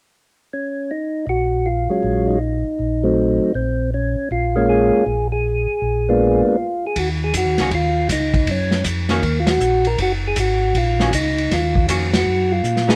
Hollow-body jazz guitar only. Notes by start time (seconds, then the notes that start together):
7.59 D#3 A#3 C#4 F#4
9.09 D#3 A#3 C#4 F#4
11.00 D#3 A#3 C#4 F#4
11.88 D#3 A#3 C#4 F#4
12.87 F#3 B3 D#4